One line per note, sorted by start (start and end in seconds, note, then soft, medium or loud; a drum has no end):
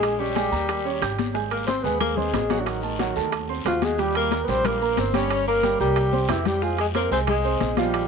0.00 0.47 A#1 medium
0.00 0.13 G#3 medium
0.00 0.21 G#3 medium
0.00 0.14 G#4 medium
0.00 0.21 G#4 loud
0.00 0.14 G#5 medium
0.00 high bongo medium
0.00 high timbale loud
0.00 long guiro medium
0.00 maracas medium
0.19 1.18 G3 medium
0.19 0.33 C#4 medium
0.19 1.19 G4 medium
0.19 0.33 C#5 medium
0.19 0.33 C#6 medium
0.19 high bongo soft
0.19 high conga soft
0.35 0.49 G#3 medium
0.35 0.49 G#4 medium
0.35 0.50 G#5 medium
0.35 high bongo soft
0.35 high conga medium
0.35 high timbale medium
0.35 short guiro medium
0.35 maracas medium
0.52 0.98 D#2 medium
0.52 0.79 A#3 medium
0.52 0.79 A#4 medium
0.52 0.79 A#5 medium
0.52 high bongo soft
0.52 high conga soft
0.52 short guiro medium
0.52 maracas soft
0.69 high bongo medium
0.69 high conga soft
0.69 high timbale loud
0.69 long guiro medium
0.69 maracas medium
0.85 0.99 C#4 medium
0.85 0.99 C#5 medium
0.85 0.99 C#6 medium
0.85 high conga soft
0.85 maracas medium
1.01 1.79 G#1 medium
1.01 1.29 G4 medium
1.01 1.29 G5 medium
1.01 1.29 G6 medium
1.01 high bongo soft
1.01 low bongo medium
1.01 high conga soft
1.01 high timbale medium
1.01 short guiro medium
1.01 maracas medium
1.18 high bongo soft
1.18 high conga medium
1.18 high timbale medium
1.18 short guiro medium
1.18 maracas soft
1.34 1.62 G#3 medium
1.34 1.62 G#4 medium
1.34 1.62 G#5 medium
1.34 high bongo medium
1.34 high conga soft
1.34 long guiro medium
1.34 maracas medium
1.51 1.67 A#3 medium
1.51 1.66 A#4 medium
1.51 high bongo soft
1.51 high conga soft
1.51 high timbale medium
1.67 1.85 C4 medium
1.67 1.82 C4 medium
1.67 1.85 C5 medium
1.67 1.82 C5 medium
1.67 1.82 C6 medium
1.67 high bongo medium
1.67 high conga medium
1.67 high timbale medium
1.67 short guiro medium
1.67 maracas medium
1.83 2.30 D#2 medium
1.83 2.12 G#3 medium
1.83 2.00 B3 medium
1.83 2.12 G#4 medium
1.83 1.99 B4 loud
1.83 2.12 G#5 medium
1.83 high bongo soft
1.83 high conga soft
1.83 short guiro medium
1.83 maracas soft
2.00 2.18 A#3 medium
2.00 2.17 A#4 medium
2.00 high bongo medium
2.00 high conga soft
2.00 low conga medium
2.00 high timbale medium
2.00 long guiro medium
2.00 maracas medium
2.16 2.61 G#3 medium
2.16 2.44 C4 medium
2.16 2.61 G#4 loud
2.16 2.44 C5 medium
2.16 2.45 C6 medium
2.16 high conga soft
2.16 low conga medium
2.33 3.10 A1 medium
2.33 high bongo soft
2.33 low bongo medium
2.33 high conga medium
2.33 high timbale medium
2.33 low timbale medium
2.33 short guiro medium
2.33 maracas medium
2.50 2.77 F#3 medium
2.50 2.77 F#4 medium
2.50 2.78 F#5 medium
2.50 high bongo soft
2.50 high conga medium
2.50 high timbale medium
2.50 short guiro medium
2.50 maracas soft
2.59 2.67 D3 soft
2.59 2.66 D4 soft
2.65 3.32 D#3 medium
2.65 3.32 D#4 medium
2.65 high bongo medium
2.65 high timbale medium
2.65 long guiro medium
2.65 maracas medium
2.83 2.97 A3 medium
2.83 2.97 A4 medium
2.83 2.97 A5 medium
2.83 high bongo soft
2.83 high conga soft
2.83 maracas medium
2.99 3.13 F#3 medium
2.99 3.13 F#4 medium
2.99 3.13 F#5 medium
2.99 high bongo medium
2.99 high conga medium
2.99 high timbale medium
2.99 short guiro medium
2.99 maracas medium
3.16 3.62 D#2 medium
3.16 3.43 A3 medium
3.16 3.43 A4 medium
3.16 3.44 A5 medium
3.16 high bongo soft
3.16 short guiro medium
3.16 maracas soft
3.32 high bongo medium
3.32 high conga soft
3.32 high timbale medium
3.32 long guiro medium
3.32 maracas medium
3.49 3.63 C4 medium
3.49 3.63 C5 medium
3.49 3.63 C6 medium
3.49 high conga soft
3.65 4.42 D#2 medium
3.65 3.86 F3 medium
3.65 3.85 F4 medium
3.65 3.93 F#4 medium
3.65 3.93 F#5 medium
3.65 3.93 F#6 medium
3.65 high bongo soft
3.65 low bongo medium
3.65 high conga soft
3.65 high timbale medium
3.65 low timbale medium
3.65 short guiro medium
3.65 maracas medium
3.82 4.02 G#3 medium
3.82 4.01 G#4 medium
3.82 high bongo soft
3.82 high conga loud
3.82 high timbale medium
3.82 short guiro medium
3.82 maracas soft
3.98 4.26 G3 medium
3.98 4.16 G3 medium
3.98 4.26 G4 medium
3.98 4.16 G4 loud
3.98 4.26 G5 medium
3.98 high bongo medium
3.98 high conga soft
3.98 long guiro medium
3.98 maracas medium
4.15 4.43 A#3 medium
4.15 4.43 A#4 medium
4.15 high bongo soft
4.15 high conga soft
4.15 high timbale loud
4.31 4.45 A#3 medium
4.31 4.46 A#4 medium
4.31 4.46 A#5 medium
4.31 high bongo medium
4.31 high conga medium
4.31 high timbale medium
4.31 short guiro medium
4.31 maracas medium
4.44 4.94 A#1 loud
4.44 4.52 B3 medium
4.44 4.51 B4 medium
4.48 4.75 G3 medium
4.48 4.69 C4 medium
4.48 4.76 G4 medium
4.48 4.68 C5 loud
4.48 4.76 G5 medium
4.48 high bongo soft
4.48 high conga soft
4.48 short guiro medium
4.48 maracas soft
4.65 5.01 A#3 medium
4.65 5.01 A#4 medium
4.65 high bongo medium
4.65 high conga soft
4.65 low conga medium
4.65 high timbale medium
4.65 long guiro medium
4.65 maracas medium
4.81 5.08 A#3 medium
4.81 5.09 A#4 medium
4.81 5.09 A#5 medium
4.81 high conga soft
4.81 maracas medium
4.97 5.74 G1 medium
4.97 5.17 C4 medium
4.97 5.17 C5 loud
4.97 high bongo soft
4.97 low bongo medium
4.97 high conga medium
4.97 high timbale medium
4.97 short guiro medium
4.97 maracas medium
5.14 5.41 G3 medium
5.14 5.47 C#4 medium
5.14 5.41 G4 medium
5.14 5.48 C#5 loud
5.14 5.41 G5 medium
5.14 high bongo soft
5.14 high conga loud
5.14 high timbale medium
5.14 short guiro medium
5.14 maracas soft
5.30 high bongo medium
5.30 high conga soft
5.30 high timbale loud
5.30 long guiro medium
5.30 maracas medium
5.47 5.61 A#3 medium
5.47 5.78 A#3 medium
5.47 5.61 A#4 medium
5.47 5.78 A#4 loud
5.47 5.61 A#5 medium
5.47 high bongo soft
5.47 high conga soft
5.47 maracas medium
5.63 5.77 G3 medium
5.63 5.77 G4 medium
5.63 5.77 G5 medium
5.63 high bongo medium
5.63 high conga medium
5.63 high timbale medium
5.63 short guiro medium
5.63 maracas medium
5.80 6.26 C2 medium
5.80 6.32 G3 medium
5.80 6.07 A#3 medium
5.80 6.31 G4 medium
5.80 6.07 A#4 medium
5.80 6.07 A#5 medium
5.80 high bongo soft
5.80 high conga soft
5.80 short guiro medium
5.80 maracas soft
5.96 high bongo medium
5.96 high conga soft
5.96 high timbale medium
5.96 long guiro medium
5.96 maracas medium
6.13 6.26 C4 medium
6.13 6.26 C5 medium
6.13 6.26 C6 medium
6.13 high conga medium
6.13 maracas medium
6.29 7.06 F2 medium
6.29 6.49 E3 medium
6.29 6.48 E4 medium
6.29 6.56 G4 medium
6.29 6.56 G5 medium
6.29 6.56 G6 medium
6.29 high bongo soft
6.29 low bongo medium
6.29 high conga medium
6.29 high timbale loud
6.29 low timbale medium
6.29 short guiro medium
6.29 maracas medium
6.45 6.66 G3 medium
6.45 6.64 G4 medium
6.45 high bongo soft
6.45 low conga medium
6.45 high timbale medium
6.45 short guiro medium
6.45 maracas soft
6.62 6.80 F3 medium
6.62 6.89 G#3 medium
6.62 6.79 F4 medium
6.62 6.90 G#4 medium
6.62 6.90 G#5 medium
6.62 high bongo medium
6.62 high conga soft
6.62 long guiro medium
6.62 maracas medium
6.78 6.87 G#3 medium
6.78 6.87 G#4 medium
6.78 high bongo soft
6.78 high conga soft
6.78 high timbale medium
6.95 7.11 A#3 medium
6.95 7.09 C4 medium
6.95 7.11 A#4 medium
6.95 7.09 C5 medium
6.95 7.09 C6 medium
6.95 high bongo medium
6.95 high conga medium
6.95 high timbale medium
6.95 short guiro medium
6.95 maracas medium
7.11 7.57 C2 medium
7.11 7.39 G#3 medium
7.11 7.19 C4 medium
7.11 7.39 G#4 medium
7.11 7.20 C5 medium
7.11 7.39 G#5 medium
7.11 high bongo soft
7.11 high conga soft
7.11 short guiro medium
7.11 maracas soft
7.27 7.80 G#3 medium
7.27 7.80 G#4 medium
7.27 high bongo medium
7.27 high conga soft
7.27 low conga medium
7.27 high timbale medium
7.27 long guiro medium
7.27 maracas medium
7.44 7.72 C4 medium
7.44 7.72 C5 medium
7.44 7.72 C6 medium
7.44 high conga soft
7.44 maracas medium
7.60 8.08 A#1 medium
7.60 high bongo soft
7.60 low bongo medium
7.60 high conga medium
7.60 high timbale medium
7.60 short guiro medium
7.60 maracas medium
7.77 8.05 F3 medium
7.77 8.08 G3 medium
7.77 8.05 F4 medium
7.77 8.08 G4 medium
7.77 8.05 F5 medium
7.77 high bongo soft
7.77 high conga loud
7.77 high timbale medium
7.77 short guiro medium
7.77 maracas soft
7.94 high bongo medium
7.94 high conga soft
7.94 high timbale medium
7.94 long guiro medium
7.94 maracas medium